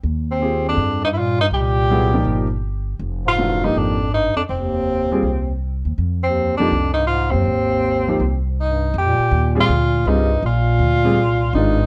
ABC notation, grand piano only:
X:1
M:4/4
L:1/8
Q:"Swing" 1/4=162
K:Fdor
V:1 name="Grand piano"
z2 [CFGA]3 z3 | z2 [^F,=B,=EA] [=F,_B,_EG]2 z3 | z2 [=E,=A,D^F] [=F,B,_EG]2 z3 | z3 [G,CFA] z4 |
z3 [F,B,EG] z4 | z3 [F,B,EG] z4 | z3 [G,CFA] z2 [G,CFA] z | z3 [G,CFA] z2 [E,A,DF] z |]